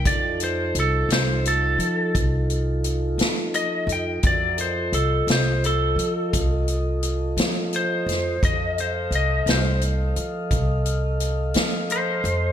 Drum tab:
HH |xxxxxxxxxxxx|xxxxxxxxxxxx|xxxxxxxxxxxx|
SD |---o-----o--|---o-----o-o|---o-----o--|
BD |o-----o-----|o-----o-----|o-----o-----|